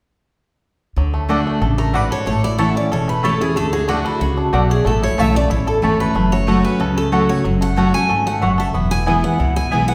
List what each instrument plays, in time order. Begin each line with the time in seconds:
0.96 upright bass D2, steel-string acoustic guitar D3, five-string banjo F#3
1.14 five-string banjo A3
1.29 steel-string acoustic guitar D3 A3 D4 F#4, mandolin A3 F#4 D5 F#5, five-string banjo A4
1.47 five-string banjo A3
1.61 upright bass A1, steel-string acoustic guitar C#3, five-string banjo A4
1.78 five-string banjo A3, steel-string acoustic guitar A#4
1.93 steel-string acoustic guitar G#2 B4, mandolin A3 F#4 D5 F#5, five-string banjo F#4
2.11 five-string banjo A4, steel-string acoustic guitar C#5
2.26 upright bass A1, steel-string acoustic guitar A2 C#5, five-string banjo A3
2.44 five-string banjo E4, steel-string acoustic guitar D5
2.58 steel-string acoustic guitar E3 A3 C#4 E4 F#5, mandolin A3 E4 C#5 A5, five-string banjo A4
2.75 five-string banjo C#4, steel-string acoustic guitar C#4 E4 D5
2.92 upright bass E1, steel-string acoustic guitar E2 C#5, five-string banjo A4
3.08 five-string banjo A3, steel-string acoustic guitar B4
3.23 steel-string acoustic guitar E3 A3 C#4 E4 A4, mandolin A3 E4 C#5 A5, five-string banjo A4
3.40 steel-string acoustic guitar C#4 E4 G#4, five-string banjo E4
3.56 upright bass D2, steel-string acoustic guitar D3 A4, five-string banjo A3
3.73 five-string banjo F#4, steel-string acoustic guitar G#4
3.88 steel-string acoustic guitar D3 A3 D4 F#4, five-string banjo A3, mandolin A3 F#4 D5 F#5
4.05 steel-string acoustic guitar E4, five-string banjo A4
4.20 upright bass C#2, steel-string acoustic guitar C#3 F#4, five-string banjo F#4
4.37 five-string banjo D4
4.53 upright bass B1, steel-string acoustic guitar B2, mandolin A3 F#4 D5 F#5, five-string banjo A3
4.70 five-string banjo F#4, steel-string acoustic guitar G#4
4.85 upright bass A1, steel-string acoustic guitar A2 A4, five-string banjo A3
5.02 five-string banjo E4, steel-string acoustic guitar C#5
5.18 upright bass B1, steel-string acoustic guitar E3 A3 C#4 E4 E5, mandolin A3 E4 C#5 A5, five-string banjo A4
5.35 five-string banjo A3, steel-string acoustic guitar C#4 E4 D5
5.50 upright bass A1, steel-string acoustic guitar E2 C#5, five-string banjo E4
5.67 five-string banjo A4, steel-string acoustic guitar A4
5.82 upright bass G#1, steel-string acoustic guitar E3 A3 C#4 E4, mandolin A3 E4 C#5 A5, five-string banjo E4
6.00 five-string banjo A3, steel-string acoustic guitar B4
6.15 upright bass F#1, steel-string acoustic guitar F#2, five-string banjo A3
6.32 five-string banjo F#4, steel-string acoustic guitar C#5
6.47 steel-string acoustic guitar F#3 A3 C#4 F#4, mandolin A3 F#4 C#5 F#5, five-string banjo A4
6.65 five-string banjo C#4, steel-string acoustic guitar B4
6.80 upright bass C#2, steel-string acoustic guitar C#3, five-string banjo A4
6.97 five-string banjo A3, steel-string acoustic guitar A4
7.12 steel-string acoustic guitar F#3 A3 C#4 F#4, mandolin A3 F#4 C#5 F#5, five-string banjo A4
7.29 five-string banjo F#4, steel-string acoustic guitar C#5
7.44 upright bass F#1, steel-string acoustic guitar F#2, five-string banjo F#3
7.61 five-string banjo A3, steel-string acoustic guitar F#5
7.76 steel-string acoustic guitar F#3 A3 C#4 F#4, mandolin A3 F#4 C#5 F#5, five-string banjo A4
7.94 five-string banjo A3, steel-string acoustic guitar C#4 F#4 G#5
8.09 upright bass G#1, steel-string acoustic guitar G#2, five-string banjo A4
8.26 five-string banjo A3, steel-string acoustic guitar F#5
8.41 upright bass F#1, steel-string acoustic guitar F#2, mandolin A3 F#4 C#5 F#5, five-string banjo F#4
8.58 five-string banjo A4, steel-string acoustic guitar E5
8.74 upright bass E1, steel-string acoustic guitar E2, five-string banjo B3
8.91 five-string banjo E4, steel-string acoustic guitar G#5
9.06 steel-string acoustic guitar E3 G#3 B3 E4, mandolin B3 E4 B4 G#5, five-string banjo E4
9.24 five-string banjo B3, steel-string acoustic guitar B3 E4 F#5
9.39 upright bass C#2, steel-string acoustic guitar B2, five-string banjo E4
9.56 five-string banjo E4, steel-string acoustic guitar G#5
9.71 upright bass B1, steel-string acoustic guitar E3 G#3 B3 E4, mandolin B3 E4 B4 G#5, five-string banjo E4
9.88 five-string banjo B3, steel-string acoustic guitar B3 E4 F#5